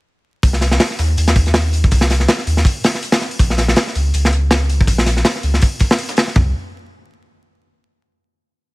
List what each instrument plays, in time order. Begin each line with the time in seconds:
0.43 sub bass C2, kick, closed hi-hat, open hi-hat
0.53 snare
0.61 snare, closed hi-hat, open hi-hat
0.71 snare
0.80 snare, closed hi-hat, open hi-hat
0.90 snare
0.99 sub bass D#2, snare, closed hi-hat, open hi-hat
1.17 sub bass D#2, closed hi-hat, open hi-hat
1.27 snare, closed hi-hat
1.36 kick, open hi-hat
1.46 snare, closed hi-hat
1.54 snare, closed hi-hat, open hi-hat
1.73 closed hi-hat, open hi-hat
1.84 kick
1.91 sub bass C2, kick, closed hi-hat, open hi-hat
2.01 snare
2.10 snare, open hi-hat
2.20 snare
2.28 snare, closed hi-hat, open hi-hat
2.38 snare, closed hi-hat
2.47 sub bass D#2, closed hi-hat, open hi-hat
2.57 snare
2.65 kick, closed hi-hat, open hi-hat
2.84 snare, closed hi-hat, open hi-hat
2.94 snare, closed hi-hat
3.03 closed hi-hat, open hi-hat
3.12 snare, open hi-hat
3.21 snare, closed hi-hat
3.31 open hi-hat
3.39 sub bass A#1, kick, closed hi-hat, open hi-hat
3.50 snare
3.58 snare, closed hi-hat, open hi-hat
3.68 snare
3.76 snare, closed hi-hat, open hi-hat
3.87 snare
3.95 sub bass C#2, closed hi-hat, open hi-hat
4.14 sub bass C#2, closed hi-hat, open hi-hat
4.25 snare
4.33 closed hi-hat
4.51 snare, closed hi-hat, open hi-hat
4.69 closed hi-hat, open hi-hat
4.81 kick
4.87 sub bass A#1, kick, closed hi-hat, open hi-hat
4.98 snare
5.06 snare, open hi-hat
5.17 snare
5.25 snare, closed hi-hat, open hi-hat
5.35 snare, closed hi-hat
5.43 sub bass C#2, closed hi-hat, open hi-hat
5.54 snare
5.61 kick, closed hi-hat, open hi-hat
5.79 kick, closed hi-hat, open hi-hat
5.90 snare, closed hi-hat
5.98 closed hi-hat, open hi-hat
6.09 snare, closed hi-hat
6.17 snare, closed hi-hat, open hi-hat
6.27 snare
6.36 sub bass C2, kick, floor tom